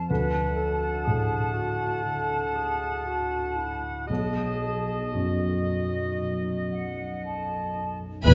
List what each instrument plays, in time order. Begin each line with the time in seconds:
Already playing: harp F3 C4 F4 C5, felt piano C4
0.09 felt piano D2, harp D3, clarinet B4, oboe F#5, flute section A5
0.33 harp A3
0.57 harp D4, clarinet A4
0.82 harp F#4
1.05 felt piano A2, clarinet G#4
1.30 harp F#4
1.54 harp D4, clarinet F#4
1.80 harp A3
2.03 harp D3, clarinet A4
2.30 harp D4
2.55 harp A3, clarinet G#4
2.81 harp F#4
3.07 clarinet F#4
3.57 harp D4, clarinet E4
3.83 harp A3
4.07 felt piano B1, harp B2, clarinet G#4, oboe D#5, flute section A5
4.35 harp F#3
4.62 harp D#4
4.87 harp F#4
5.13 felt piano F#2, clarinet F#4, flute section D#5
5.40 harp F#4
5.65 harp D#4
5.91 harp F#3
6.17 harp B2
6.44 harp D#4
6.69 harp F#3, flute section F#5
6.96 harp F#4
7.22 harp A4, flute section A5
7.49 harp F#4
7.75 harp D#4
8.01 harp F#3
8.26 double bass section E1, cello section E2, felt piano E2, french horn section E3 G#3, viola section B4, violin section E5 G#5 B5, flute section B5